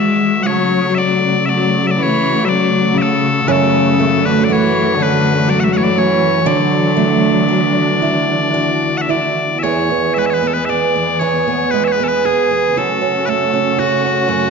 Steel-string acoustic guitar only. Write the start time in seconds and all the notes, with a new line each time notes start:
3.48 F#2
3.99 A3
4.50 F#4
5.00 C#4
5.49 F#4
5.98 C#4
6.46 D3
6.97 A3
7.48 F#4
8.02 E4
8.54 F#4
9.09 E4
9.63 E2 G#4
9.91 B3
10.16 G#3
10.43 B3
10.69 G#4
10.96 B3
11.21 E2 G#4
11.48 B3
11.74 G#3
12.00 B3
12.25 G#4
12.51 B3
12.77 F#2 F#4
13.01 C#4
13.27 A3
13.54 C#4
13.79 F#4
14.04 C#4
14.28 F#2 F#4